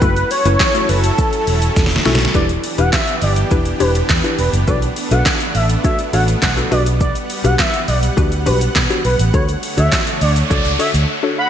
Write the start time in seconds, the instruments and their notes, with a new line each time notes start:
0.01 fingered electric bass F#1, supersaw synth F#3 C#4 E4 A4, synth pluck A3 C#4 E4 F#4 A4, soft synth lead B4, kick, shaker
0.16 closed hi-hat, shaker
0.31 soft synth lead C#5, open hi-hat, shaker
0.45 fingered electric bass F#1, synth pluck A3 C#4 E4 F#4 B4, closed hi-hat, shaker
0.60 kick, snare, clap, shaker
0.74 synth pluck A3 C#4 E4 F#4 A4, closed hi-hat, shaker
0.89 fingered electric bass F#1, soft synth lead B4, open hi-hat, shaker
1.03 soft synth lead A4, closed hi-hat, shaker
1.18 kick, shaker
1.33 closed hi-hat, shaker
1.47 fingered electric bass E1, open hi-hat, shaker
1.62 closed hi-hat, shaker
1.76 fingered electric bass E1, kick, snare, shaker
1.86 snare
1.91 closed hi-hat, shaker
1.96 snare
2.05 fingered electric bass B1, synth pluck A3 C#4 E4 F#4 A4, snare, open hi-hat, shaker
2.15 snare
2.20 closed hi-hat, shaker
2.25 snare
2.34 fingered electric bass E1, supersaw synth E3 B3 D4 G4, synth pluck D4 E4 G4 B4, analog synth lead D5, kick, shaker
2.49 closed hi-hat, shaker
2.64 open hi-hat, shaker
2.78 fingered electric bass E1, synth pluck D4 E4 G4 B4, analog synth lead F#5, closed hi-hat, shaker
2.93 analog synth lead E5, kick, snare, clap, shaker
3.08 closed hi-hat, shaker
3.22 fingered electric bass G1, analog synth lead D5, open hi-hat, shaker
3.36 closed hi-hat, shaker
3.51 fingered electric bass E1, synth pluck D4 E4 G4 B4, kick, shaker
3.65 closed hi-hat, shaker
3.80 fingered electric bass E1, synth pluck D4 E4 G4 C#5, analog synth lead B4, open hi-hat, shaker
3.95 closed hi-hat, shaker
4.09 fingered electric bass E2, kick, snare, clap, shaker
4.24 synth pluck D4 E4 G4 B4, closed hi-hat, shaker
4.38 fingered electric bass E1, analog synth lead B4, open hi-hat, shaker
4.53 fingered electric bass F#1, closed hi-hat, shaker
4.67 fingered electric bass B1, supersaw synth A3, synth pluck D4 F#4 A4 B4, analog synth lead D5, kick, shaker
4.82 closed hi-hat, shaker
4.96 open hi-hat, shaker
5.11 fingered electric bass B1, synth pluck D4 F#4 A4 B4, analog synth lead F#5, closed hi-hat, shaker
5.26 kick, snare, clap, shaker
5.40 closed hi-hat, shaker
5.55 fingered electric bass A1, analog synth lead E5, open hi-hat, shaker
5.70 closed hi-hat, shaker
5.84 synth pluck D4 F#4 A4 C#5, analog synth lead E5, kick, shaker
5.99 closed hi-hat, shaker
6.13 fingered electric bass A1, synth pluck D4 F#4 A4 C#5, analog synth lead F#5, open hi-hat, shaker
6.28 closed hi-hat, shaker
6.42 fingered electric bass B1, analog synth lead F#5, kick, snare, clap, shaker
6.57 synth pluck D4 F#4 A4 B4, closed hi-hat, shaker
6.71 fingered electric bass B1, supersaw synth G3 F#5, synth pluck D4 F#4 G4 B4, analog synth lead D5, open hi-hat, shaker
6.86 closed hi-hat, shaker
7.00 analog synth lead D5, kick, shaker
7.15 closed hi-hat, shaker
7.30 open hi-hat, shaker
7.44 fingered electric bass B1, synth pluck D4 F#4 G4 B4, analog synth lead F#5, closed hi-hat, shaker
7.59 analog synth lead E5, kick, snare, clap, shaker
7.74 closed hi-hat, shaker
7.88 fingered electric bass B1, analog synth lead D5, open hi-hat, shaker
8.03 closed hi-hat, shaker
8.17 fingered electric bass D2, synth pluck D4 F#4 G4 B4, kick, shaker
8.32 closed hi-hat, shaker
8.46 fingered electric bass B1, synth pluck D4 F#4 G4 B4, analog synth lead B4, open hi-hat, shaker
8.61 closed hi-hat, shaker
8.75 fingered electric bass B2, kick, snare, clap, shaker
8.90 synth pluck D4 F#4 G4 C#5, closed hi-hat, shaker
9.04 fingered electric bass B1, analog synth lead B4, open hi-hat, shaker
9.19 fingered electric bass A1, closed hi-hat, shaker
9.34 fingered electric bass D2, supersaw synth D3 A3 C#5, synth pluck D4 F#4 A4 C#5, analog synth lead C#5, kick, noise sweep, shaker
9.49 closed hi-hat, shaker
9.63 open hi-hat, shaker
9.77 fingered electric bass D2, synth pluck D4 F#4 A4 C#5, analog synth lead E5, closed hi-hat, shaker
9.92 kick, snare, clap, shaker
10.07 closed hi-hat, shaker
10.21 fingered electric bass D2, analog synth lead D5, open hi-hat, shaker
10.36 closed hi-hat, shaker
10.50 fingered electric bass C#2, synth pluck D4 F#4 A4 C#5, analog synth lead D5, kick, shaker
10.65 fingered electric bass C#2, closed hi-hat, shaker
10.79 synth pluck D4 F#4 A4 C#5, analog synth lead E5, open hi-hat, shaker
10.94 fingered electric bass D2, closed hi-hat, shaker
11.23 synth pluck D4 F#4 A4 C#5
11.38 analog synth lead F#5, soft synth lead B5